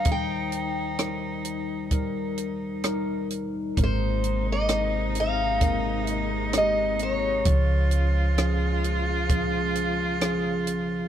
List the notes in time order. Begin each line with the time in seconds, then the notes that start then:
Already playing: G3 D#4 A#4 C5
0.05 D#2 D#3 G3 D#4 C5, kick, closed hi-hat
0.12 G5
0.52 closed hi-hat
0.99 G3 D#4 A#4, cross-stick, closed hi-hat
1.45 closed hi-hat
1.91 G3 D#4 A#4, kick, closed hi-hat
2.38 closed hi-hat
2.84 G3 D#4 A#4, cross-stick, closed hi-hat
3.30 closed hi-hat
3.77 G#1 G#2 C3 G#3 A#3 C4 D#4 A#4, kick, closed hi-hat
3.84 C5
4.24 closed hi-hat
4.52 D#5
4.69 G#3 C4 C5, cross-stick, closed hi-hat
5.15 closed hi-hat
5.20 F5
5.61 G#3 C4 A#4, kick, closed hi-hat
6.07 D#5, closed hi-hat
6.53 G#3 C4 G4, cross-stick, closed hi-hat
6.58 D#5
6.99 C#5, closed hi-hat
7.45 C#2 C#3 F3 C#4 F4 G#4, kick, closed hi-hat
7.91 closed hi-hat
8.37 F3 C#4 G#4, cross-stick, closed hi-hat
8.84 closed hi-hat
9.28 F3 C#4 G#4 C5, kick, closed hi-hat
9.75 closed hi-hat
10.21 F3 C#4 G#4, cross-stick, closed hi-hat
10.67 closed hi-hat